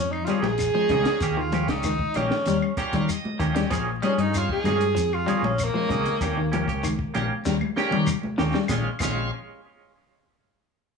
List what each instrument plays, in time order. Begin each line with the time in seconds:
Already playing: fingered electric bass F2, clean electric guitar F3, tenor saxophone C#4
0.12 tenor saxophone D#4, claves
0.24 clean electric guitar G3, tenor saxophone F4, snare, closed hi-hat, low conga, shekere
0.29 clean electric guitar F3 A#3 C#4 G#4
0.42 fingered electric bass A#1, tenor saxophone G#4, snare, high conga
0.58 snare, closed hi-hat, claves, shekere
0.73 clean electric guitar F3, tonewheel organ G#3 C4 C#4 D#4, high conga
0.89 fingered electric bass C#2, clean electric guitar C#3 F3 A#3 C#4 G#4, kick, closed hi-hat, low conga, shekere
1.05 clean electric guitar A#3 C#4 G#4, snare, closed hi-hat
1.20 fingered electric bass D#2, clean electric guitar A#3 C#4 G4, kick, closed hi-hat, claves, shekere
1.37 clean electric guitar D#3, tenor saxophone F4
1.52 clean electric guitar F3 A#3 C#4 G4, closed hi-hat, high conga, shekere
1.68 fingered electric bass C#2, clean electric guitar C#4 G4, tenor saxophone D#4, kick, snare, closed hi-hat
1.83 clean electric guitar D#3, snare, closed hi-hat, high conga, claves, shekere
1.99 kick
2.14 fingered electric bass A#1, tonewheel organ G3 A#3 C#4 F4, clean electric guitar A#3 G4, tenor saxophone C#4, muted clean electric guitar stroke, closed hi-hat, high conga, low conga, claves, shekere
2.31 snare
2.46 fingered electric bass D#2, clean electric guitar G3, tonewheel organ G3 A#3 C#4 F4, snare, closed hi-hat, shekere
2.62 claves
2.77 tonewheel organ G3 A#3 C#4 F4, clean electric guitar A#3 C#4 G4, muted fingered electric bass stroke, kick, snare, closed hi-hat, shekere
2.93 fingered electric bass D#3, clean electric guitar G3, kick, snare, closed hi-hat, high conga
3.09 tonewheel organ D#5, closed hi-hat, claves, shekere
3.24 muted fingered electric bass stroke, high conga
3.39 fingered electric bass D#2, clean electric guitar D#3 A#3 C#4 G4, kick, closed hi-hat, low conga, shekere
3.55 clean electric guitar G3 C#4 G4, snare, closed hi-hat
3.71 fingered electric bass A#1, clean electric guitar F3 A#3 C#4 G#4, tonewheel organ G#3 C4 C#4 F4, kick, closed hi-hat, claves, shekere
4.02 clean electric guitar F3 G3 C#4 G#4, tonewheel organ G#3 C4 C#4 D#4, tenor saxophone C#4, closed hi-hat, high conga, shekere
4.18 fingered electric bass G2, clean electric guitar A#3 C#4 G#4, tenor saxophone D#4, closed hi-hat
4.34 tonewheel organ G#3 C4 C#4 F4, tenor saxophone F4, closed hi-hat, claves, shekere
4.49 tenor saxophone G#4, kick
4.64 fingered electric bass G2, clean electric guitar F3 A#3 C#4 G#4, closed hi-hat, high conga, low conga, claves, shekere
4.81 closed hi-hat
4.95 fingered electric bass F2, clean electric guitar F3, closed hi-hat, shekere
5.13 tenor saxophone F4, claves
5.26 clean electric guitar F3 G3 A#3 C#4 G#4, closed hi-hat, low conga, shekere
5.42 fingered electric bass A#1, tenor saxophone C#4, high conga
5.58 closed hi-hat, claves, shekere
5.64 tenor saxophone A#3
5.74 clean electric guitar F3, tonewheel organ G#3 C4 C#4 D#4, muted fingered electric bass stroke, high conga
5.89 fingered electric bass C#2, clean electric guitar C#3 F3 A#3 C#4 G#4, kick, closed hi-hat, low conga, shekere
6.06 closed hi-hat, high conga
6.21 fingered electric bass D#2, clean electric guitar A#3 C#4 G4, kick, closed hi-hat, low conga, claves, shekere
6.37 clean electric guitar D#3
6.52 clean electric guitar F3 A#3 C#4 G4, closed hi-hat, high conga, shekere
6.67 fingered electric bass C#2, clean electric guitar C#4 G4, kick, closed hi-hat
6.83 clean electric guitar D#3, closed hi-hat, high conga, claves, shekere
6.99 kick
7.14 fingered electric bass A#1, tonewheel organ G3 A#3 C#4 F4, clean electric guitar A#3 C#4 G4, closed hi-hat, high conga, low conga, claves, shekere
7.45 fingered electric bass D#2, tonewheel organ G3 A#3 C#4 F4, clean electric guitar G3, snare, shekere
7.61 high conga, claves
7.76 tonewheel organ G3 A#3 C#4 G4, clean electric guitar A#3 C#4 G4, muted fingered electric bass stroke, snare, shekere
7.91 fingered electric bass D#3, clean electric guitar G3, mid tom, high conga
8.07 mid tom, claves, shekere
8.23 muted fingered electric bass stroke, high conga
8.38 fingered electric bass D#2, clean electric guitar D#3 A#3 C#4 G4, snare, low conga, shekere
8.54 clean electric guitar G3, snare
8.68 fingered electric bass A#1, clean electric guitar A#2 G#3 C#4 F4, tonewheel organ G#3 C4 C#4 F4, kick, snare, low conga, claves, shekere
8.99 fingered electric bass A#1, clean electric guitar A#2 G#3 C#4 F4, tonewheel organ G#3 C4 C#4 F4, kick, crash, low conga, claves, shekere